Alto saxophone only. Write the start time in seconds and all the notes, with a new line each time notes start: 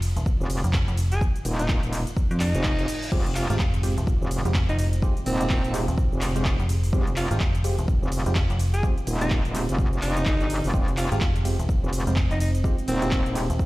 1.12 G#4
1.60 D#4
2.40 D#4
3.36 F4
3.50 F4
4.69 D#4
4.79 D#4
5.26 C4
7.17 F4
7.31 F4
8.74 G#4
9.21 D#4
10.02 D#4
10.98 F4
11.12 F4
12.31 D#4
12.40 D#4
12.88 C4